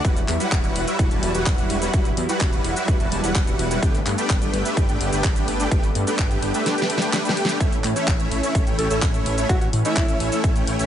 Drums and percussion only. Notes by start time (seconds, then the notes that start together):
0.05 kick, closed hi-hat, shaker
0.17 closed hi-hat, shaker
0.28 clap, open hi-hat
0.40 closed hi-hat, shaker
0.52 kick, clap, closed hi-hat, shaker
0.64 closed hi-hat, shaker
0.76 open hi-hat
0.88 closed hi-hat, shaker
0.99 kick, closed hi-hat, shaker
1.11 closed hi-hat, shaker
1.23 open hi-hat
1.35 closed hi-hat, shaker
1.46 kick, clap, closed hi-hat, shaker
1.58 closed hi-hat, shaker
1.70 open hi-hat
1.82 closed hi-hat, shaker
1.94 kick, closed hi-hat, shaker
2.05 closed hi-hat, shaker
2.17 open hi-hat
2.29 closed hi-hat, shaker
2.41 kick, clap, closed hi-hat, shaker
2.53 closed hi-hat, shaker
2.64 open hi-hat
2.76 closed hi-hat, shaker
2.88 kick, closed hi-hat, shaker
3.00 closed hi-hat, shaker
3.12 open hi-hat
3.24 closed hi-hat, shaker
3.35 kick, clap, closed hi-hat, shaker
3.47 closed hi-hat, shaker
3.59 open hi-hat
3.71 closed hi-hat, shaker
3.83 kick, closed hi-hat, shaker
3.95 closed hi-hat, shaker
4.06 clap, open hi-hat
4.18 closed hi-hat, shaker
4.30 kick, clap, closed hi-hat, shaker
4.42 closed hi-hat, shaker
4.54 open hi-hat
4.65 closed hi-hat, shaker
4.77 kick, closed hi-hat, shaker
4.89 closed hi-hat, shaker
5.01 open hi-hat
5.13 closed hi-hat, shaker
5.24 kick, clap, closed hi-hat, shaker
5.36 closed hi-hat, shaker
5.48 open hi-hat
5.60 closed hi-hat, shaker
5.71 kick, closed hi-hat, shaker
5.83 closed hi-hat, shaker
5.95 open hi-hat
6.07 closed hi-hat, shaker
6.19 kick, clap, closed hi-hat, shaker
6.31 closed hi-hat, shaker
6.43 open hi-hat
6.54 closed hi-hat, shaker
6.66 snare, closed hi-hat, shaker
6.78 closed hi-hat, shaker
6.82 snare
6.90 open hi-hat
6.98 snare, closed hi-hat
7.02 shaker
7.13 snare, clap, closed hi-hat, shaker
7.25 snare, closed hi-hat, shaker
7.37 open hi-hat
7.45 snare, closed hi-hat
7.49 shaker
7.60 kick, closed hi-hat, shaker
7.72 closed hi-hat, shaker
7.84 clap, open hi-hat
7.96 closed hi-hat, shaker
8.08 kick, clap, closed hi-hat, shaker
8.20 closed hi-hat, shaker
8.32 open hi-hat
8.43 closed hi-hat, shaker
8.55 kick, closed hi-hat, shaker
8.67 closed hi-hat, shaker
8.79 open hi-hat
8.91 closed hi-hat, shaker
9.02 kick, clap, closed hi-hat, shaker
9.14 closed hi-hat, shaker
9.26 open hi-hat
9.38 closed hi-hat, shaker
9.49 kick, closed hi-hat, shaker
9.61 closed hi-hat, shaker
9.73 open hi-hat
9.85 closed hi-hat, shaker
9.97 kick, clap, closed hi-hat, shaker
10.09 closed hi-hat, shaker
10.20 open hi-hat
10.32 closed hi-hat, shaker
10.44 kick, closed hi-hat, shaker
10.56 closed hi-hat, shaker
10.67 open hi-hat
10.79 closed hi-hat, shaker